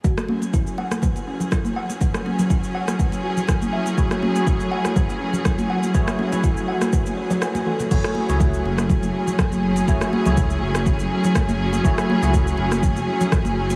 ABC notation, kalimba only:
X:1
M:4/4
L:1/16
Q:"Swing 16ths" 1/4=122
K:F#m
V:1 name="Kalimba"
F z C z E z f z B z C z E z f z | B z C z E z f z B z F z E z e z | F z C z E z f z B z C z E z f z | B z C z E z f z B z c c B z A z |
z16 | z16 | z16 |]